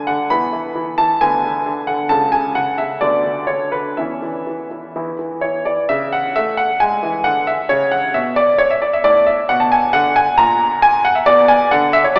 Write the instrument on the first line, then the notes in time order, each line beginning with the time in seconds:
grand piano
Already playing: D4 B4
0.07 D3 F#5
0.30 E2 E3 B3 B4 B5
0.53 E3
0.75 E3
0.98 E3 A5
1.21 D2 D3 B3 B4 G#5
1.44 D3
1.66 D3
1.87 D3 F#5
2.09 C#2 C#3 C#4 A4 A5
2.32 C#3 G#5
2.55 C#3 F#5
2.78 C#3 E5
3.01 D2 D3 B3 F#4 D5
3.24 D3
3.47 D3 C#5
3.72 D3 B4
3.97 E2 E3 C#4 E4 E5
4.22 E3
4.47 E3
4.71 E3
4.96 E2 E3 B3 E4
5.19 E3
5.41 E3 C#5
5.65 E3 D5
5.89 C#3 E5
6.13 F#5
6.36 A3 E5
6.57 F#5
6.80 G#3 G#5
7.03 E3
7.24 D3 F#5
7.47 E5
7.69 C#3 C#5
7.91 F#5
8.14 B2 E5
8.36 D5
8.58 C#5
8.71 E5
8.82 D5
8.93 E5
9.04 A2 D5
9.27 E5
9.49 B2 F#5
9.60 A5
9.72 G#5
9.93 D3 F#5
10.16 G#5
10.38 A#2 A#5
10.82 G#5
11.05 F#5
11.15 E5
11.26 B2 D5
11.48 G#5
11.71 D3 F#5
11.93 E5
12.04 C#5
12.16 F#3 D5